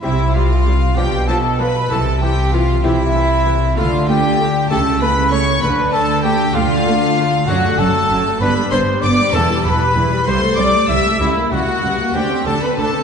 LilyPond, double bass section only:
\new Staff \with { instrumentName = "Double bass section" } { \clef bass \time 6/8 \key c \major \tempo 4. = 64 c,4. b,,4. | c,4. c,4. | d,4. cis,4. | d,4. d,4. |
\key a \dorian fis,,8 fis,,8 fis,,8 g,,8 g,,8 g,,8 | e,,8 e,,8 e,,8 c,8 c,8 c,8 | cis,8 cis,8 cis,8 d,8 d,8 d,8 | }